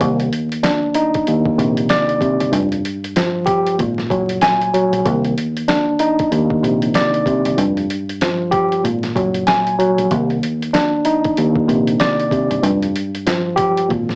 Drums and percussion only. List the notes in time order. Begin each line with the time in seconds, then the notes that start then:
0.00 kick, closed hi-hat
0.19 closed hi-hat
0.32 closed hi-hat
0.52 closed hi-hat
0.63 snare, closed hi-hat
0.94 closed hi-hat
1.14 kick, closed hi-hat
1.27 closed hi-hat
1.45 kick
1.59 closed hi-hat
1.77 closed hi-hat
1.89 snare, closed hi-hat
2.09 closed hi-hat
2.21 kick, closed hi-hat
2.40 closed hi-hat
2.53 closed hi-hat
2.72 closed hi-hat
2.85 closed hi-hat
3.04 closed hi-hat
3.16 snare, closed hi-hat
3.47 kick, closed hi-hat
3.67 closed hi-hat
3.79 kick, closed hi-hat
3.98 snare
4.10 kick, closed hi-hat
4.29 closed hi-hat
4.42 snare, closed hi-hat
4.62 closed hi-hat
4.74 closed hi-hat
4.93 closed hi-hat
5.06 kick, closed hi-hat
5.25 closed hi-hat
5.38 closed hi-hat
5.57 closed hi-hat
5.69 snare, closed hi-hat
6.00 closed hi-hat
6.19 kick, closed hi-hat
6.32 closed hi-hat
6.50 kick
6.64 closed hi-hat
6.82 closed hi-hat
6.94 snare, closed hi-hat
7.14 closed hi-hat
7.26 kick, closed hi-hat
7.45 closed hi-hat
7.58 closed hi-hat
7.77 closed hi-hat
7.90 closed hi-hat
8.09 closed hi-hat
8.21 snare, closed hi-hat
8.52 kick, closed hi-hat
8.72 closed hi-hat
8.85 closed hi-hat
9.03 snare, closed hi-hat
9.16 kick, closed hi-hat
9.34 closed hi-hat
9.47 snare, closed hi-hat
9.67 closed hi-hat
9.80 closed hi-hat
9.98 closed hi-hat
10.11 kick, closed hi-hat
10.30 closed hi-hat
10.43 closed hi-hat
10.62 closed hi-hat
10.74 snare, closed hi-hat
11.05 closed hi-hat
11.25 kick, closed hi-hat
11.37 closed hi-hat
11.56 kick
11.69 closed hi-hat
11.87 closed hi-hat
12.00 snare, closed hi-hat
12.20 closed hi-hat
12.31 kick, closed hi-hat
12.51 closed hi-hat
12.63 closed hi-hat
12.82 closed hi-hat
12.96 closed hi-hat
13.15 closed hi-hat
13.27 snare, closed hi-hat
13.57 kick, closed hi-hat
13.77 closed hi-hat
13.90 kick, closed hi-hat
14.09 snare